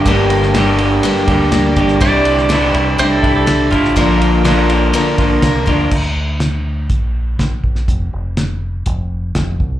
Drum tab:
CC |----------------|----------------|----------------|x---------------|
RD |x-x-x-x-x-x-x-x-|x-x-x-x-x-x-x-x-|x-x-x-x-x-x-x-x-|----------------|
HH |----------------|----------------|----------------|----x---x---x---|
SD |---oo-------o--o|---oo-------o--o|----o-------o---|----o-------o--o|
BD |o---------o---o-|o---------o---o-|o---------o---o-|o-------o---o-o-|

CC |----------------|
RD |----------------|
HH |x---x---x---x---|
SD |----o-------o---|
BD |o-------o---o-o-|